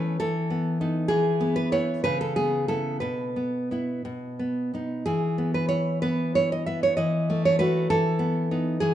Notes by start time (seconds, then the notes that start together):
Already playing: E3 A3 C#4 B4
0.20 E3 A4
0.50 B3
0.81 B3 D#4
1.08 E3 G#4
1.41 B3
1.56 B4
1.72 B3 E4 C#5
2.04 C#3 B4
2.21 A4
2.36 B3 G#4
2.68 B3 E4 A4
3.00 B2 B4
3.36 B3
3.71 B3 E4
4.05 B2
4.39 B3
4.74 B3 D#4
5.06 E3 G#4
5.38 B3
5.54 B4
5.69 E4 C#5
6.02 B3 B4
6.35 E4 C#5
6.52 D#5
6.66 B3 E5
6.83 C#5
6.97 E3 D#5
7.30 A3
7.45 C#5
7.59 A3 F#4 B4
7.90 E3 A4
8.19 B3
8.51 B3 D#4
8.80 E3 G#4